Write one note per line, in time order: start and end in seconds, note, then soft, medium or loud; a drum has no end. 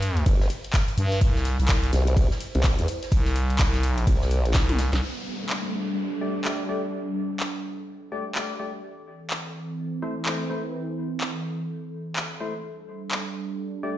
0.00 0.25 G2 loud
0.00 4.98 G3 medium
0.00 1.18 D4 medium
0.00 1.17 A4 medium
0.00 open hi-hat loud
0.00 shaker medium
0.17 closed hi-hat medium
0.26 0.48 G1 loud
0.26 kick loud
0.26 closed hi-hat medium
0.26 ride medium
0.26 shaker medium
0.40 snare soft
0.50 open hi-hat loud
0.50 shaker medium
0.64 closed hi-hat soft
0.73 kick loud
0.73 snare loud
0.73 clap loud
0.73 closed hi-hat medium
0.73 ride medium
0.73 shaker loud
0.88 closed hi-hat medium
0.88 closed hi-hat soft
0.97 1.20 G2 loud
0.97 open hi-hat loud
0.97 shaker medium
1.12 snare medium
1.12 closed hi-hat soft
1.21 1.57 C2 medium
1.21 4.99 E4 medium
1.21 4.99 C5 medium
1.21 kick loud
1.21 closed hi-hat medium
1.21 ride medium
1.21 shaker medium
1.36 snare soft
1.45 snare soft
1.45 open hi-hat loud
1.45 shaker medium
1.60 1.91 C2 loud
1.60 closed hi-hat soft
1.68 kick loud
1.68 snare loud
1.68 clap loud
1.68 closed hi-hat medium
1.68 ride medium
1.68 shaker medium
1.83 closed hi-hat soft
1.93 2.29 C2 loud
1.93 snare soft
1.93 open hi-hat loud
1.93 shaker medium
2.07 closed hi-hat medium
2.17 kick loud
2.17 closed hi-hat medium
2.17 ride medium
2.17 shaker medium
2.31 snare soft
2.40 open hi-hat loud
2.40 shaker medium
2.55 2.76 C2 loud
2.55 closed hi-hat soft
2.64 kick loud
2.64 snare loud
2.64 clap loud
2.64 closed hi-hat medium
2.64 ride medium
2.64 shaker medium
2.78 2.87 E2 loud
2.78 closed hi-hat soft
2.78 closed hi-hat medium
2.88 open hi-hat loud
2.88 shaker medium
3.03 snare soft
3.03 closed hi-hat soft
3.12 3.58 C2 medium
3.12 kick loud
3.12 closed hi-hat medium
3.12 ride medium
3.12 shaker medium
3.26 snare medium
3.26 closed hi-hat soft
3.36 open hi-hat loud
3.36 shaker medium
3.50 closed hi-hat soft
3.59 4.06 C2 loud
3.59 kick loud
3.59 snare loud
3.59 clap loud
3.59 closed hi-hat medium
3.59 ride medium
3.59 shaker medium
3.74 snare medium
3.74 closed hi-hat soft
3.83 open hi-hat loud
3.83 shaker medium
3.98 closed hi-hat medium
4.07 4.53 C2 loud
4.07 kick loud
4.07 closed hi-hat medium
4.07 ride medium
4.07 shaker medium
4.21 snare soft
4.31 open hi-hat loud
4.31 shaker medium
4.45 closed hi-hat soft
4.54 4.91 C2 loud
4.54 kick loud
4.54 snare loud
4.54 snare medium
4.54 clap loud
4.54 closed hi-hat medium
4.54 ride medium
4.54 shaker medium
4.69 closed hi-hat soft
4.69 closed hi-hat medium
4.69 high tom medium
4.79 snare loud
4.79 open hi-hat loud
4.79 shaker medium
4.93 5.01 C2 loud
4.93 snare medium
4.93 snare soft
4.93 closed hi-hat soft
5.02 8.80 G3 medium
5.02 8.80 D4 medium
5.02 13.98 A4 medium
5.02 downlifter medium
5.49 clap loud
6.21 6.34 A3 medium
6.21 6.34 G4 medium
6.21 6.34 D5 loud
6.45 6.63 A3 medium
6.45 6.63 G4 medium
6.45 6.63 D5 medium
6.45 clap loud
6.69 6.82 A3 medium
6.69 6.82 G4 medium
6.69 6.82 D5 medium
7.40 clap loud
8.12 8.24 A3 medium
8.12 8.24 G4 medium
8.12 8.24 D5 medium
8.35 8.54 A3 medium
8.35 8.54 G4 medium
8.35 8.54 D5 medium
8.35 clap loud
8.59 8.72 A3 medium
8.59 8.72 G4 medium
8.59 8.72 D5 medium
8.83 12.61 E3 medium
8.83 12.61 C4 medium
9.30 clap loud
10.02 10.15 A3 medium
10.02 10.15 E4 medium
10.02 10.15 C5 medium
10.26 10.44 A3 medium
10.26 10.44 E4 medium
10.26 10.44 C5 medium
10.26 clap loud
10.50 10.63 A3 medium
10.50 10.63 E4 medium
10.50 10.63 C5 medium
11.21 clap loud
12.16 clap loud
12.40 12.53 A3 medium
12.40 12.53 E4 medium
12.40 12.53 C5 medium
12.64 13.98 G3 medium
12.64 13.98 D4 medium
13.11 clap loud
13.83 13.96 A3 medium
13.83 13.96 G4 medium
13.83 13.96 D5 medium